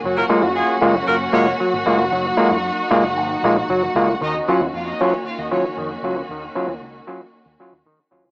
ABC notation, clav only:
X:1
M:4/4
L:1/16
Q:1/4=115
K:Ebdor
V:1 name="Clav"
G, z [A,B,F] [B,F] z2 [A,B,F] z3 [A,B,F] z G, z [A,B,F] [B,F] | G, z [A,B,F] [B,F] z2 [A,B,F] z3 [A,B,F] z G, z [A,B,F] [B,F] | E, z [G,DF] [DF] z2 [G,DF] z3 [G,DF] z E, z [G,DF] [DF] | E, z [G,DF] [DF] z2 [G,DF] z3 [G,DF] z E, z [G,DF] [DF] |]